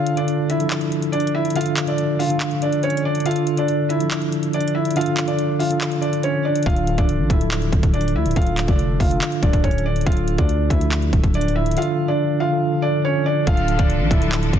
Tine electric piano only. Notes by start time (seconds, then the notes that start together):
Already playing: D3 D4 F4 A4
0.15 D3 D4 F4 A4
0.58 D3 F3 D4 A4
1.55 D3 D4 F4 A4
1.86 D3 D4 F4 A4
2.28 D3 D4 F4 A4
2.60 D3 D4 F4 A4
3.25 D3 D4 F4 A4
3.56 D3 D4 F4 A4
3.99 D3 F3 D4 A4
4.95 D3 D4 F4 A4
5.26 D3 D4 F4 A4
5.69 D3 D4 F4 A4
6.01 D3 D4 F4 A4
6.65 D3 D4 F4 A4
6.96 D3 D4 F4 A4
7.39 D3 F3 D4 A4
8.35 D3 D4 F4 A4
8.67 D3 D4 F4 A4
9.09 D3 D4 F4 A4
9.41 D3 D4 F4 A4
10.05 D3 D4 F4 A4
10.37 D3 D4 F4 A4
10.80 D3 F3 D4 A4
11.76 D3 D4 F4 A4
12.07 D3 D4 F4 A4
12.50 D3 D4 F4 A4
12.82 D3 D4 F4 A4
13.46 D3 D4 F4 A4
13.77 D3 D4 F4 A4
14.20 D3 F3 D4 A4